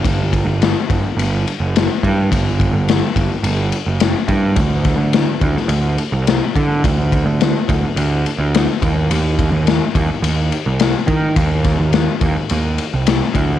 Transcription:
<<
  \new Staff \with { instrumentName = "Picked electric bass" } { \clef bass \time 4/4 \tempo 4 = 106 g,,8. g,,8 r16 g,,16 r16 g,,8 r16 fis,,8 r16 g,8 | g,,8. g,,8 r16 g,,16 r16 g,,8 r16 fis,,8 r16 g,8 | d,8. d,8 r16 d,16 r16 d,8 r16 c,8 r16 d8 | d,8. d,8 r16 d,16 r16 d,8 r16 d,8 r16 ees,8 |
ees,8. ees,8 r16 ees,16 r16 ees,8 r16 c,8 r16 ees8 | ees,8. ees,8 r16 ees,16 r16 ees,8 r16 c,8 r16 d,8 | }
  \new DrumStaff \with { instrumentName = "Drums" } \drummode { \time 4/4 <bd cymr>8 <bd cymr>8 <cymr sn>8 <bd cymr>8 cymr8 cymr8 <cymr sn>8 <bd cymr>8 | <bd cymr>8 <bd cymr>8 <cymr sn>8 <bd cymr>8 cymr8 cymr8 <cymr sn>8 <bd cymr>8 | <bd cymr>8 <bd cymr sn>8 <cymr sn>8 <bd cymr>16 sn16 cymr8 cymr8 <cymr sn>8 <bd cymr>8 | <bd cymr>8 <bd cymr>8 <cymr sn>8 <bd cymr>8 cymr8 cymr8 <cymr sn>8 <bd cymr>8 |
cymr8 <bd cymr>8 <cymr sn>8 <bd cymr>8 cymr8 cymr8 <cymr sn>8 <bd cymr>8 | <bd cymr>8 <bd cymr sn>8 <cymr sn>8 <bd cymr>8 cymr8 cymr8 <cymr sn>8 <bd cymr>8 | }
>>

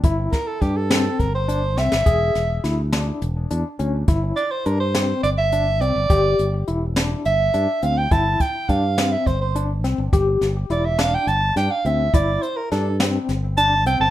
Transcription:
<<
  \new Staff \with { instrumentName = "Soprano saxophone" } { \time 7/8 \key g \dorian \tempo 4 = 104 r8 bes'16 a'16 g'16 a'8. bes'16 c''8. e''8~ | e''4 r2 r8 | r8 d''16 c''16 bes'16 c''8. d''16 e''8. d''8~ | d''4 r4 e''4 f''16 g''16 |
a''8 g''8 f''8. e''16 c''16 c''8 r8. | r4 d''16 e''16 f''16 g''16 a''8 g''16 f''16 e''8 | d''8 c''16 bes'16 a'8 r4 a''8 g''16 a''16 | }
  \new Staff \with { instrumentName = "Tine electric piano" } { \time 7/8 \key g \dorian e'4 d'8 c'4 d'8 c'8 | gis'4 e'8 d'4 d'8 cis'8 | e'4 d'8 c'4 d'8 c'8 | g'4 e'8 d'4 d'8 c'8 |
e'4 d'8 c'4 d'8 c'8 | g'4 e'8 d'4 d'8 c'8 | e'4 d'8 c'4 d'8 c'8 | }
  \new Staff \with { instrumentName = "Fingered electric bass" } { \clef bass \time 7/8 \key g \dorian g,,8 r8 g,4 g,,4 c,16 g,,16 | e,,8 e,,8 d,4 e,,8 e,16 r16 d,8 | g,,8 r8 g,4 g,,4 c,16 g,,16 | g,,8 g,,8 e,,4 g,,8 g,16 r16 d,8 |
g,,8 r8 g,4 g,,4 c,16 g,,16 | g,,8 g,,8 e,,4 g,,8 g,16 r16 d,8 | g,,8 r8 g,4 g,,4 c,16 g,,16 | }
  \new DrumStaff \with { instrumentName = "Drums" } \drummode { \time 7/8 <hh bd>8 <hh bd sn>8 <hh bd>8 <hh sn>8 <hh bd>8 hh8 sn16 sn16 | <hh bd>8 <hh sn>8 <hh sn>8 <hh sn>8 hh8 hh8 hh8 | <hh bd>8 hh8 hh8 <hh sn>8 hh8 hh8 hh8 | <hh bd>8 hh8 hh8 <hh sn>8 hh8 hh8 hh8 |
<hh bd>8 <hh bd>8 <hh bd>8 <hh sn>8 <hh bd>8 hh8 <hh sn>8 | <hh bd>8 <hh sn>8 hh8 <hh sn>8 hh8 <hh sn>8 hh8 | <hh bd>8 hh8 <hh sn>8 <hh sn>8 <hh sn>8 hh8 hh8 | }
>>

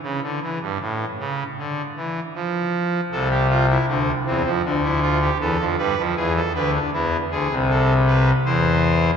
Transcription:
<<
  \new Staff \with { instrumentName = "Pipe organ" } { \time 4/4 \key a \phrygian \tempo 4 = 78 cis16 d16 e16 g,16 a,8 cis8 d8 e8 f4 | a'16 g'16 f'16 e'16 d'8 c'8 d'16 e'16 f'16 g'16 a'8 b'8 | gis'16 a'16 b'16 d'16 e'8 gis'8 a'8 b'8 c''4 | }
  \new Staff \with { instrumentName = "Pipe organ" } { \clef bass \time 4/4 \key a \phrygian r1 | <c, c>4 <d, d>8 <e, e>16 <f, f>16 <d, d>4 <e, e>16 <f, f>16 <g, g>16 <f, f>16 | <e, e>8 <d, d>8 <e, e>8 <d, d>16 <c, c>4~ <c, c>16 <e, e>4 | }
>>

